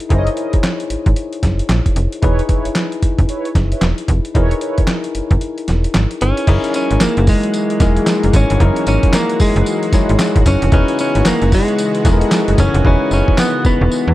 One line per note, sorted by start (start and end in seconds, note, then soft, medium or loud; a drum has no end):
0.00 0.11 A#4 medium
0.00 closed hi-hat medium
0.09 0.29 F#1 loud
0.09 2.18 D#4 medium
0.09 0.28 E4 medium
0.09 2.19 E4 medium
0.09 0.28 G#4 medium
0.09 2.19 G#4 medium
0.09 0.28 A#4 medium
0.09 0.19 C5 medium
0.09 0.28 D#5 loud
0.09 kick loud
0.09 closed hi-hat medium
0.18 2.23 C#5 medium
0.27 closed hi-hat medium
0.36 0.55 E4 medium
0.36 0.55 G#4 medium
0.36 0.55 A#4 medium
0.36 0.55 D#5 medium
0.36 closed hi-hat medium
0.53 0.58 G#1 soft
0.53 kick medium
0.53 closed hi-hat medium
0.64 snare loud
0.64 clap medium
0.64 closed hi-hat medium
0.80 closed hi-hat soft
0.90 0.97 G#1 soft
0.90 closed hi-hat medium
1.06 1.14 G#1 medium
1.06 kick medium
1.06 closed hi-hat soft
1.16 closed hi-hat medium
1.33 closed hi-hat soft
1.43 1.62 F#1 medium
1.43 kick medium
1.43 snare medium
1.43 closed hi-hat medium
1.59 closed hi-hat medium
1.69 1.81 A#1 medium
1.69 snare loud
1.69 clap medium
1.69 closed hi-hat medium
1.86 kick medium
1.86 closed hi-hat medium
1.96 2.08 F1 medium
1.96 closed hi-hat medium
2.12 closed hi-hat medium
2.22 2.41 E1 loud
2.22 4.31 D#4 medium
2.22 2.41 E4 loud
2.22 4.31 E4 medium
2.22 4.32 G#4 medium
2.22 2.41 B4 medium
2.22 4.32 B4 medium
2.22 2.41 C#5 loud
2.22 kick loud
2.22 closed hi-hat medium
2.39 closed hi-hat soft
2.49 2.67 E4 medium
2.49 2.67 B4 medium
2.49 2.68 C#5 medium
2.49 kick medium
2.49 closed hi-hat medium
2.65 2.70 F#1 medium
2.65 closed hi-hat medium
2.75 snare loud
2.75 clap medium
2.75 closed hi-hat medium
2.92 closed hi-hat soft
3.02 3.09 F#1 soft
3.02 kick medium
3.02 closed hi-hat medium
3.18 3.26 F#1 medium
3.18 kick medium
3.18 closed hi-hat soft
3.29 3.47 E4 medium
3.29 3.47 B4 medium
3.29 3.47 C#5 medium
3.29 closed hi-hat medium
3.45 closed hi-hat soft
3.55 3.74 F#1 medium
3.55 kick medium
3.55 snare medium
3.55 closed hi-hat medium
3.72 3.85 E4 medium
3.72 3.85 B4 medium
3.72 3.85 C#5 medium
3.72 closed hi-hat medium
3.81 3.93 E1 medium
3.81 snare loud
3.81 clap medium
3.81 closed hi-hat medium
3.98 closed hi-hat medium
4.08 4.20 F1 loud
4.08 kick medium
4.08 closed hi-hat medium
4.25 closed hi-hat medium
4.34 4.54 E1 loud
4.34 6.17 D#4 medium
4.34 4.53 E4 medium
4.34 6.17 E4 medium
4.34 6.18 G#4 medium
4.34 6.18 A#4 medium
4.34 4.53 B4 medium
4.34 4.54 C#5 loud
4.34 kick loud
4.34 closed hi-hat medium
4.51 closed hi-hat soft
4.61 4.80 E4 medium
4.61 4.80 B4 medium
4.61 4.80 C#5 medium
4.61 closed hi-hat medium
4.78 4.82 F#1 soft
4.78 kick medium
4.78 closed hi-hat medium
4.87 snare loud
4.87 clap medium
4.87 closed hi-hat medium
5.04 closed hi-hat medium
5.15 5.22 F#1 soft
5.15 closed hi-hat medium
5.31 5.38 F#1 loud
5.31 kick medium
5.31 closed hi-hat soft
5.41 closed hi-hat medium
5.58 closed hi-hat soft
5.68 5.87 E1 medium
5.68 snare medium
5.68 closed hi-hat medium
5.84 closed hi-hat medium
5.94 6.07 G#1 loud
5.94 snare loud
5.94 clap medium
5.94 closed hi-hat medium
6.11 closed hi-hat soft
6.21 6.33 G1 medium
6.21 6.74 C#4 medium
6.21 6.46 D#4 medium
6.21 6.47 E4 soft
6.21 6.47 G#4 soft
6.21 6.48 B4 medium
6.21 closed hi-hat medium
6.37 closed hi-hat medium
6.47 6.59 F#1 loud
6.47 10.68 E3 medium
6.47 10.68 F#3 medium
6.47 10.68 G#3 medium
6.47 10.68 A#3 medium
6.47 7.39 D#4 medium
6.47 7.39 E4 medium
6.47 14.14 F#4 medium
6.47 7.39 G#4 medium
6.47 7.39 A#4 medium
6.47 kick loud
6.47 closed hi-hat medium
6.47 crash loud
6.64 closed hi-hat medium
6.74 7.02 C#4 medium
6.74 closed hi-hat medium
6.74 tambourine medium
6.91 6.98 G#1 medium
6.91 closed hi-hat medium
7.01 7.28 A#3 medium
7.01 snare loud
7.01 clap medium
7.01 closed hi-hat medium
7.01 tambourine loud
7.17 7.36 F#1 loud
7.17 closed hi-hat medium
7.27 8.38 G#3 loud
7.27 kick loud
7.27 open hi-hat medium
7.27 tambourine medium
7.43 closed hi-hat medium
7.54 closed hi-hat medium
7.54 tambourine medium
7.70 closed hi-hat medium
7.80 7.99 E1 medium
7.80 8.50 D#4 medium
7.80 8.50 E4 medium
7.80 8.51 G#4 medium
7.80 8.51 A#4 medium
7.80 kick loud
7.80 snare medium
7.80 closed hi-hat medium
7.80 tambourine medium
7.96 closed hi-hat medium
8.07 snare loud
8.07 clap medium
8.07 closed hi-hat medium
8.07 tambourine medium
8.23 8.31 F#1 medium
8.23 closed hi-hat medium
8.33 8.45 G#1 loud
8.33 8.84 C#4 medium
8.33 kick medium
8.33 closed hi-hat medium
8.33 tambourine medium
8.50 8.58 G1 loud
8.50 closed hi-hat medium
8.60 8.72 F#1 loud
8.60 9.51 D#4 medium
8.60 9.51 E4 medium
8.60 9.52 G#4 medium
8.60 9.52 A#4 medium
8.60 kick loud
8.60 closed hi-hat medium
8.76 closed hi-hat medium
8.86 8.99 G#1 medium
8.86 9.15 C#4 medium
8.86 closed hi-hat medium
8.86 tambourine medium
9.03 kick loud
9.03 closed hi-hat medium
9.13 9.41 A#3 medium
9.13 snare loud
9.13 clap medium
9.13 closed hi-hat medium
9.13 tambourine loud
9.29 closed hi-hat medium
9.40 9.47 F#1 medium
9.40 10.43 G#3 loud
9.40 kick loud
9.40 open hi-hat medium
9.40 tambourine medium
9.56 9.63 F#1 loud
9.56 closed hi-hat medium
9.66 closed hi-hat medium
9.66 tambourine medium
9.83 closed hi-hat medium
9.93 9.99 G#1 soft
9.93 10.63 D#4 medium
9.93 10.63 E4 medium
9.93 10.63 G#4 medium
9.93 10.63 C#5 medium
9.93 kick loud
9.93 snare medium
9.93 closed hi-hat medium
9.93 tambourine medium
10.09 10.17 G#1 loud
10.09 closed hi-hat medium
10.19 snare loud
10.19 clap loud
10.19 closed hi-hat medium
10.19 tambourine loud
10.36 10.43 G#1 medium
10.36 kick medium
10.36 closed hi-hat medium
10.46 10.58 F#1 loud
10.46 10.72 C#4 medium
10.46 kick medium
10.46 closed hi-hat loud
10.46 tambourine medium
10.62 10.70 F1 medium
10.62 closed hi-hat medium
10.72 10.84 E1 loud
10.72 14.14 C#3 medium
10.72 14.14 E3 medium
10.72 14.14 G#3 medium
10.72 14.14 B3 medium
10.72 10.98 C#4 medium
10.72 11.64 D#4 medium
10.72 11.64 E4 medium
10.72 11.64 G#4 medium
10.72 11.64 B4 loud
10.72 kick loud
10.72 closed hi-hat medium
10.88 closed hi-hat medium
10.99 11.27 C#4 loud
10.99 closed hi-hat medium
10.99 tambourine medium
11.15 11.23 G#1 medium
11.15 closed hi-hat medium
11.25 11.54 A#3 medium
11.25 snare loud
11.25 clap medium
11.25 closed hi-hat medium
11.25 tambourine loud
11.42 11.61 F#1 medium
11.42 closed hi-hat medium
11.52 12.63 G#3 loud
11.52 kick loud
11.52 open hi-hat medium
11.52 tambourine medium
11.68 closed hi-hat medium
11.79 closed hi-hat medium
11.79 tambourine medium
11.95 closed hi-hat medium
12.05 12.24 E1 loud
12.05 12.75 D#4 medium
12.05 12.75 E4 medium
12.05 12.75 G#4 medium
12.05 12.14 A4 medium
12.05 kick medium
12.05 snare medium
12.05 closed hi-hat medium
12.05 tambourine medium
12.13 12.79 A#4 medium
12.21 closed hi-hat medium
12.31 snare loud
12.31 clap medium
12.31 closed hi-hat medium
12.31 tambourine loud
12.48 12.55 F#1 medium
12.48 closed hi-hat medium
12.58 12.70 F#1 loud
12.58 12.84 C#4 loud
12.58 kick loud
12.58 closed hi-hat medium
12.58 tambourine medium
12.74 12.82 F1 loud
12.74 closed hi-hat medium
12.85 12.96 E1 loud
12.85 13.11 C#4 medium
12.85 13.76 D#4 medium
12.85 13.76 E4 medium
12.85 13.76 G#4 medium
12.85 13.76 B4 medium
12.85 kick loud
13.11 13.23 F#1 medium
13.11 13.39 C#4 medium
13.11 tambourine medium
13.28 kick loud
13.38 13.63 B3 medium
13.38 snare loud
13.38 clap medium
13.38 tambourine loud
13.65 13.71 E1 medium
13.65 14.14 B3 loud
13.65 kick loud
13.65 tambourine medium
13.81 13.88 E1 loud
13.92 tambourine medium
14.07 14.14 E2 loud